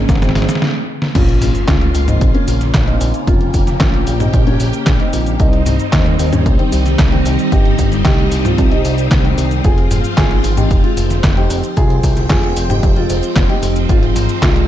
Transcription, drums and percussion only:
0.09 kick, snare, closed hi-hat, cabasa
0.16 snare
0.22 snare, closed hi-hat, cabasa
0.29 snare
0.35 snare, open hi-hat
0.42 snare
0.49 snare, closed hi-hat, cabasa
0.55 snare
0.62 snare
1.02 snare
1.15 kick, closed hi-hat, crash, cabasa
1.28 closed hi-hat
1.42 open hi-hat, high tom, cabasa
1.55 closed hi-hat, cabasa
1.68 kick, snare, clap, closed hi-hat, cabasa
1.81 closed hi-hat
1.95 open hi-hat, cabasa
2.08 closed hi-hat, high tom, cabasa
2.21 kick, closed hi-hat, cabasa
2.35 closed hi-hat
2.48 open hi-hat, cabasa
2.61 snare, closed hi-hat, cabasa
2.74 kick, snare, clap, closed hi-hat, cabasa
2.88 closed hi-hat
3.01 open hi-hat, cabasa
3.14 closed hi-hat, cabasa
3.27 kick, closed hi-hat, cabasa
3.41 closed hi-hat
3.54 kick, open hi-hat, cabasa
3.67 snare, closed hi-hat, cabasa
3.80 kick, snare, clap, closed hi-hat, cabasa
3.94 closed hi-hat
4.07 open hi-hat, cabasa
4.20 closed hi-hat, high tom, cabasa
4.33 kick, closed hi-hat, cabasa
4.47 closed hi-hat
4.60 open hi-hat, cabasa
4.73 closed hi-hat, cabasa
4.87 kick, snare, clap, closed hi-hat, cabasa
5.00 closed hi-hat
5.13 open hi-hat, cabasa
5.26 closed hi-hat, cabasa
5.40 kick, closed hi-hat, cabasa
5.53 closed hi-hat
5.66 open hi-hat, high tom, cabasa
5.80 closed hi-hat, cabasa
5.93 kick, snare, clap, closed hi-hat, cabasa
6.06 closed hi-hat
6.19 open hi-hat, cabasa
6.33 closed hi-hat, high tom, cabasa
6.46 kick, closed hi-hat, cabasa
6.59 closed hi-hat
6.72 open hi-hat, cabasa
6.86 snare, closed hi-hat, cabasa
6.99 kick, snare, clap, closed hi-hat, cabasa
7.12 closed hi-hat
7.26 open hi-hat, cabasa
7.39 closed hi-hat, cabasa
7.52 kick, closed hi-hat, cabasa
7.65 closed hi-hat
7.79 kick, open hi-hat, cabasa
7.92 snare, closed hi-hat, cabasa
8.05 kick, snare, clap, closed hi-hat, cabasa
8.18 closed hi-hat
8.32 open hi-hat, cabasa
8.45 closed hi-hat, high tom, cabasa
8.58 kick, closed hi-hat, cabasa
8.72 closed hi-hat
8.85 open hi-hat, cabasa
8.98 closed hi-hat, cabasa
9.11 kick, snare, clap, closed hi-hat, cabasa
9.25 closed hi-hat
9.38 open hi-hat, cabasa
9.51 closed hi-hat, cabasa
9.64 kick, closed hi-hat, cabasa
9.78 closed hi-hat
9.91 open hi-hat, high tom, cabasa
10.04 closed hi-hat, cabasa
10.18 kick, snare, clap, closed hi-hat, cabasa
10.31 closed hi-hat
10.44 open hi-hat, cabasa
10.57 closed hi-hat, high tom, cabasa
10.71 kick, closed hi-hat, cabasa
10.84 closed hi-hat
10.97 open hi-hat, cabasa
11.11 snare, closed hi-hat, cabasa
11.24 kick, snare, clap, closed hi-hat, cabasa
11.37 closed hi-hat
11.50 open hi-hat, cabasa
11.64 closed hi-hat, cabasa
11.77 kick, closed hi-hat, cabasa
11.90 closed hi-hat
12.03 kick, open hi-hat, cabasa
12.17 snare, closed hi-hat, cabasa
12.30 kick, snare, clap, closed hi-hat, cabasa
12.43 closed hi-hat
12.57 open hi-hat, cabasa
12.70 closed hi-hat, high tom, cabasa
12.83 kick, closed hi-hat, cabasa
12.96 closed hi-hat
13.10 open hi-hat, cabasa
13.23 closed hi-hat, cabasa
13.36 kick, snare, clap, closed hi-hat, cabasa
13.50 closed hi-hat
13.63 open hi-hat, cabasa
13.76 closed hi-hat, cabasa
13.89 kick, closed hi-hat, cabasa
14.03 closed hi-hat
14.16 open hi-hat, high tom, cabasa
14.29 closed hi-hat, cabasa
14.42 kick, snare, clap, closed hi-hat, cabasa
14.56 closed hi-hat

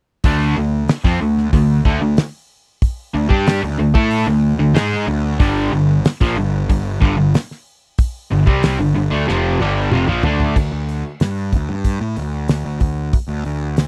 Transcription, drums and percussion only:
0.24 kick, open hi-hat
0.88 snare, open hi-hat
1.04 kick
1.37 snare
1.53 kick, open hi-hat
1.85 kick
2.17 snare, open hi-hat
2.82 kick, open hi-hat
3.30 kick
3.47 snare, open hi-hat
3.95 kick
4.11 open hi-hat
4.75 snare, open hi-hat
4.93 snare
5.40 kick, open hi-hat
6.05 snare, open hi-hat
6.21 kick
6.69 kick, open hi-hat
7.02 kick
7.34 snare, open hi-hat
7.51 snare
7.98 kick, open hi-hat
8.47 kick
8.63 snare, open hi-hat
9.12 snare
9.28 snare
9.60 high tom
9.91 mid tom
10.08 mid tom
10.23 floor tom
10.40 floor tom
10.56 kick, crash
10.89 open hi-hat
11.20 snare, open hi-hat
11.53 kick, open hi-hat
11.85 kick, open hi-hat
12.16 open hi-hat
12.48 snare, open hi-hat
12.80 kick, open hi-hat
13.13 kick, open hi-hat
13.45 open hi-hat
13.77 snare, open hi-hat

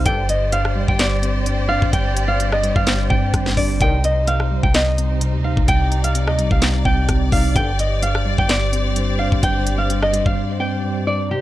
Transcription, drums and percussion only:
0.06 kick, closed hi-hat
0.29 closed hi-hat
0.52 closed hi-hat
0.65 cross-stick
0.88 kick
0.99 snare, clap, closed hi-hat
1.23 closed hi-hat
1.46 closed hi-hat
1.82 kick
1.93 kick, closed hi-hat
2.17 closed hi-hat
2.40 closed hi-hat
2.52 cross-stick
2.64 closed hi-hat
2.76 kick
2.87 snare, clap, closed hi-hat
3.10 kick
3.34 kick, cross-stick, closed hi-hat
3.46 snare
3.57 kick, open hi-hat
3.81 kick, closed hi-hat
4.04 closed hi-hat
4.27 closed hi-hat
4.40 cross-stick
4.63 kick
4.74 snare, clap, closed hi-hat
4.98 closed hi-hat
5.21 closed hi-hat
5.57 kick
5.68 kick, closed hi-hat
5.92 closed hi-hat
6.04 closed hi-hat
6.15 closed hi-hat
6.28 cross-stick
6.39 closed hi-hat
6.51 kick
6.62 snare, clap, closed hi-hat
6.85 kick
7.09 kick, cross-stick, closed hi-hat
7.32 kick, open hi-hat
7.56 kick, closed hi-hat
7.79 closed hi-hat
8.03 closed hi-hat
8.15 cross-stick
8.38 kick
8.49 snare, clap, closed hi-hat
8.73 closed hi-hat
8.96 closed hi-hat
9.32 kick
9.43 kick, closed hi-hat
9.67 closed hi-hat
9.90 closed hi-hat
10.03 cross-stick
10.14 closed hi-hat
10.26 kick

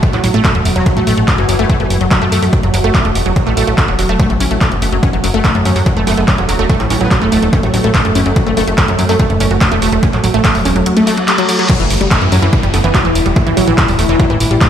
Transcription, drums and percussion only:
0.03 kick, closed hi-hat
0.13 clap, closed hi-hat
0.24 open hi-hat
0.34 closed hi-hat
0.45 kick, clap, closed hi-hat
0.55 closed hi-hat
0.65 open hi-hat
0.76 closed hi-hat
0.86 kick, closed hi-hat
0.97 closed hi-hat
1.07 open hi-hat
1.17 closed hi-hat
1.28 kick, clap, closed hi-hat
1.38 closed hi-hat
1.49 open hi-hat
1.59 closed hi-hat
1.70 kick, closed hi-hat
1.80 closed hi-hat
1.90 open hi-hat
2.01 closed hi-hat
2.11 kick, clap, closed hi-hat
2.22 closed hi-hat
2.32 open hi-hat
2.42 open hi-hat
2.53 kick, closed hi-hat
2.63 closed hi-hat
2.74 open hi-hat
2.84 closed hi-hat
2.95 kick, clap, closed hi-hat
3.05 closed hi-hat
3.15 open hi-hat
3.26 closed hi-hat
3.36 kick, closed hi-hat
3.47 clap, closed hi-hat
3.57 open hi-hat
3.67 closed hi-hat
3.78 kick, clap, closed hi-hat
3.88 closed hi-hat
3.99 open hi-hat
4.09 closed hi-hat
4.20 kick, closed hi-hat
4.30 closed hi-hat
4.40 open hi-hat
4.51 closed hi-hat
4.61 kick, clap, closed hi-hat
4.72 closed hi-hat
4.82 open hi-hat
4.92 closed hi-hat
5.03 kick, closed hi-hat
5.13 closed hi-hat
5.24 open hi-hat
5.34 closed hi-hat
5.45 kick, clap, closed hi-hat
5.55 closed hi-hat
5.65 open hi-hat
5.76 open hi-hat
5.86 kick, closed hi-hat
5.97 closed hi-hat
6.07 open hi-hat
6.17 closed hi-hat
6.28 kick, clap, closed hi-hat
6.38 closed hi-hat
6.49 open hi-hat
6.59 closed hi-hat
6.70 kick, closed hi-hat
6.80 clap, closed hi-hat
6.90 open hi-hat
7.01 closed hi-hat
7.11 kick, clap, closed hi-hat
7.22 closed hi-hat
7.32 open hi-hat
7.42 closed hi-hat
7.53 kick, closed hi-hat
7.63 closed hi-hat
7.74 open hi-hat
7.84 closed hi-hat
7.95 kick, clap, closed hi-hat
8.05 closed hi-hat
8.15 open hi-hat
8.26 closed hi-hat
8.36 kick, closed hi-hat
8.47 closed hi-hat
8.57 open hi-hat
8.67 closed hi-hat
8.78 kick, clap, closed hi-hat
8.88 closed hi-hat
8.99 open hi-hat
9.09 open hi-hat
9.20 kick, closed hi-hat
9.30 closed hi-hat
9.40 open hi-hat
9.51 closed hi-hat
9.61 kick, clap, closed hi-hat
9.72 closed hi-hat
9.82 open hi-hat
9.92 closed hi-hat
10.03 kick, closed hi-hat
10.13 clap, closed hi-hat
10.24 open hi-hat
10.34 closed hi-hat
10.45 kick, clap, closed hi-hat
10.55 open hi-hat
10.65 open hi-hat
10.76 closed hi-hat
10.86 closed hi-hat
10.97 closed hi-hat
11.07 open hi-hat
11.17 closed hi-hat
11.28 clap, closed hi-hat
11.38 closed hi-hat
11.49 open hi-hat
11.59 closed hi-hat
11.70 kick, closed hi-hat, crash
11.80 closed hi-hat
11.90 open hi-hat
12.01 closed hi-hat
12.11 kick, clap, closed hi-hat
12.22 closed hi-hat
12.32 open hi-hat
12.42 closed hi-hat
12.53 kick, closed hi-hat
12.63 closed hi-hat
12.74 open hi-hat
12.84 closed hi-hat
12.95 kick, clap, closed hi-hat
13.05 closed hi-hat
13.15 open hi-hat
13.26 closed hi-hat
13.36 kick, closed hi-hat
13.47 closed hi-hat
13.57 open hi-hat
13.67 closed hi-hat
13.78 kick, clap, closed hi-hat
13.88 open hi-hat
13.99 open hi-hat
14.09 closed hi-hat
14.20 kick, closed hi-hat
14.30 closed hi-hat
14.40 open hi-hat
14.51 closed hi-hat
14.61 kick, clap, closed hi-hat

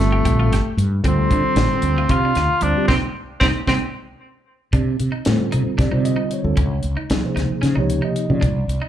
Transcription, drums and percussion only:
0.00 snare, closed hi-hat
0.25 kick, closed hi-hat
0.53 snare, closed hi-hat
0.78 closed hi-hat
1.04 kick, closed hi-hat
1.31 kick, closed hi-hat
1.56 snare, closed hi-hat
1.82 closed hi-hat
2.09 kick, closed hi-hat
2.35 snare, closed hi-hat
2.61 closed hi-hat
2.88 kick, snare
3.41 kick, snare
3.67 kick, snare
4.73 kick, closed hi-hat
5.00 closed hi-hat
5.25 snare, closed hi-hat
5.52 closed hi-hat
5.79 kick, snare, closed hi-hat
6.05 closed hi-hat
6.31 closed hi-hat
6.57 kick, closed hi-hat
6.83 closed hi-hat
7.10 snare, closed hi-hat
7.37 snare, closed hi-hat
7.63 snare, closed hi-hat
7.90 closed hi-hat
8.16 closed hi-hat
8.43 kick, closed hi-hat
8.69 closed hi-hat

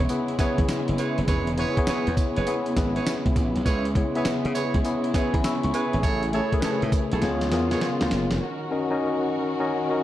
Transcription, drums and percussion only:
0.09 closed hi-hat, tambourine
0.28 closed hi-hat
0.39 kick, snare, closed hi-hat, tambourine
0.58 kick, closed hi-hat
0.68 snare, closed hi-hat, tambourine
0.88 closed hi-hat
0.98 closed hi-hat, tambourine
1.18 closed hi-hat
1.28 kick, closed hi-hat, tambourine
1.47 closed hi-hat
1.58 closed hi-hat
1.77 kick, closed hi-hat
1.87 snare, closed hi-hat, tambourine
2.07 closed hi-hat
2.17 kick, closed hi-hat, tambourine
2.36 closed hi-hat
2.47 closed hi-hat, tambourine
2.66 closed hi-hat
2.77 kick, snare, closed hi-hat, tambourine
2.96 closed hi-hat
3.06 snare, closed hi-hat, tambourine
3.26 kick, closed hi-hat
3.36 kick, closed hi-hat, tambourine
3.56 closed hi-hat
3.66 kick, closed hi-hat, tambourine
3.85 closed hi-hat
3.95 kick, closed hi-hat
4.15 closed hi-hat
4.25 snare, closed hi-hat, tambourine
4.45 closed hi-hat
4.55 closed hi-hat, tambourine
4.74 kick, closed hi-hat
4.84 closed hi-hat, tambourine
5.04 closed hi-hat
5.14 kick, snare, closed hi-hat, tambourine
5.34 kick, closed hi-hat
5.44 snare, closed hi-hat, tambourine
5.63 closed hi-hat
5.74 closed hi-hat, tambourine
5.93 closed hi-hat
6.03 kick, closed hi-hat, tambourine
6.23 closed hi-hat
6.33 closed hi-hat
6.52 kick, closed hi-hat
6.62 snare, closed hi-hat, tambourine
6.82 closed hi-hat
6.92 kick, closed hi-hat, tambourine
7.12 closed hi-hat
7.22 snare, closed hi-hat
7.41 snare, closed hi-hat
7.52 snare, closed hi-hat
7.71 snare, closed hi-hat
7.81 snare, closed hi-hat
8.01 snare, closed hi-hat
8.11 snare, closed hi-hat
8.31 snare, closed hi-hat

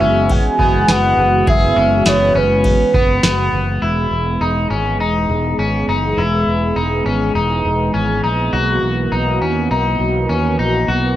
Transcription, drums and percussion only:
0.29 kick, ride
0.59 kick
0.89 snare, ride, tambourine
1.47 kick, ride
2.06 snare, ride, tambourine
2.64 kick, ride
2.94 kick
3.23 snare, ride, tambourine

